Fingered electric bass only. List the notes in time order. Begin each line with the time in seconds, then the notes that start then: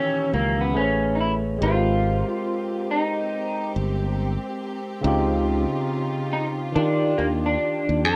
0.33 C#2
0.77 A1
1.62 G#1
3.76 G1
5.04 C#2
6.76 D#3
7.19 D#2
7.89 D#2
8.05 F2